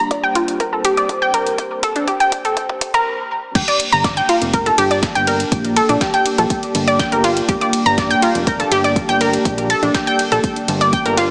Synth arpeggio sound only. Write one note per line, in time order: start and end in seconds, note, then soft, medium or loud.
0.00 0.10 A#5 loud
0.11 0.16 D5 medium
0.23 0.35 G5 loud
0.35 0.40 F4 medium
0.60 0.65 A#4 medium
0.73 0.80 A4 medium
0.85 0.90 G4 loud
0.97 1.05 D5 medium
1.22 1.33 G5 loud
1.34 1.42 A#4 medium
1.83 1.91 A4 medium
1.96 2.03 D4 medium
2.08 2.20 G4 medium
2.20 2.32 G5 loud
2.45 2.53 A4 medium
2.94 3.02 A#4 medium
3.55 3.60 G4 medium
3.55 3.60 G5 medium
3.68 3.76 D5 medium
3.68 3.76 D6 medium
3.92 4.04 A#5 loud
3.92 4.04 A#6 medium
4.04 4.09 D5 medium
4.04 4.09 D6 medium
4.17 4.28 G5 loud
4.17 4.28 G6 medium
4.29 4.34 F4 medium
4.29 4.34 F5 medium
4.53 4.58 A#4 medium
4.53 4.58 A#5 medium
4.66 4.74 A4 medium
4.66 4.74 A5 medium
4.78 4.83 G4 loud
4.78 4.83 G5 medium
4.91 4.98 D5 medium
4.91 4.98 D6 medium
5.15 5.27 G5 loud
5.15 5.27 G6 medium
5.27 5.35 A#4 medium
5.27 5.35 A#5 medium
5.76 5.85 A4 medium
5.76 5.85 A5 medium
5.89 5.97 D4 medium
5.89 5.97 D5 medium
6.01 6.13 G4 medium
6.01 6.13 G5 medium
6.14 6.25 G5 loud
6.14 6.25 G6 medium
6.38 6.46 A4 medium
6.38 6.46 A5 medium
6.88 6.99 D5 medium
6.88 6.99 D6 medium
6.99 7.08 G5 loud
6.99 7.08 G6 medium
7.12 7.23 A#4 medium
7.12 7.23 A#5 medium
7.24 7.32 F4 loud
7.24 7.32 F5 medium
7.49 7.54 G4 medium
7.49 7.54 G5 medium
7.61 7.69 D5 medium
7.61 7.69 D6 medium
7.86 7.97 A#5 loud
7.86 7.97 A#6 medium
7.98 8.03 D5 medium
7.98 8.03 D6 medium
8.10 8.22 G5 loud
8.10 8.22 G6 medium
8.22 8.27 F4 medium
8.22 8.27 F5 medium
8.47 8.52 A#4 medium
8.47 8.52 A#5 medium
8.60 8.67 A4 medium
8.60 8.67 A5 medium
8.72 8.76 G4 loud
8.72 8.76 G5 medium
8.84 8.92 D5 medium
8.84 8.92 D6 medium
9.09 9.20 G5 loud
9.09 9.20 G6 medium
9.21 9.29 A#4 medium
9.21 9.29 A#5 medium
9.70 9.78 A4 loud
9.70 9.78 A5 medium
9.83 9.90 D4 medium
9.83 9.90 D5 medium
9.95 10.07 G4 medium
9.95 10.06 G5 medium
10.07 10.18 G5 loud
10.07 10.19 G6 medium
10.32 10.39 A4 medium
10.32 10.39 A5 medium
10.81 10.92 D5 medium
10.81 10.92 D6 medium
10.93 11.01 G5 loud
10.93 11.01 G6 medium
11.06 11.17 A#4 medium
11.06 11.17 A#5 medium
11.17 11.26 F4 loud
11.17 11.26 F5 medium